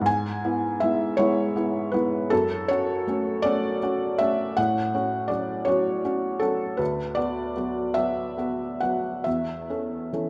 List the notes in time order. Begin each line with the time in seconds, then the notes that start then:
0.01 G#2
0.06 G#5
0.45 B3 E4
0.80 G#3 B3 E4 E5
1.17 G#3 B3 E4 C#5
1.56 B3 E4
1.92 G#3 B3 E4 B4
2.30 F#2 A4
2.68 C#4 F#4 C#5
3.07 A3 C#4 F#4
3.42 A3 C#4 F#4 D5
3.83 C#4 F#4
4.18 A3 C#4 F#4 E5
4.57 A2 F#5
4.94 C#4 F#4
5.28 F#3 C#4 F#4 D5
5.65 F#3 C#4 F#4 C#5
6.05 C#4 F#4
6.40 F#3 C#4 F#4 A4
6.77 D2 B4
7.15 B3 F#4 D5
7.57 F#3 B3 F#4
7.94 F#3 B3 F#4 E5
8.38 B3 F#4
8.80 F#3 B3 F#4 F#5
9.24 E2 E5
9.70 C#4 A4
10.13 E3 C#4 A4